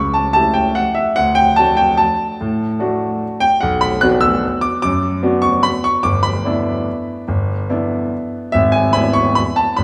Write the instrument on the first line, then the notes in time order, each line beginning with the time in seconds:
grand piano
Already playing: C#2 C#6
0.14 A5
0.33 A3 E4 G4 A5
0.54 G5
0.75 F#5
0.95 E5
1.16 D2 F#5
1.35 G5
1.56 A3 D4 F#4 A5
1.77 G5
1.97 A5
2.41 A2
2.79 A3 D4 F#4
3.40 G5
3.61 B1 F#5
3.81 B5
4.01 B3 D4 F#4 F#6
4.21 E6
4.61 D6
4.82 F#2 D6
5.23 B3 D4 F#4
5.42 C#6
5.63 B5
5.84 C#6
6.03 G1 D6
6.23 B5
6.45 B3 D4 E4
7.28 G1
7.69 B3 D4 E4
8.52 G#1 E5
8.72 G#5
8.93 B3 D4 E4 B5
9.13 C#6
9.35 B5
9.56 A5
9.77 G#1 B5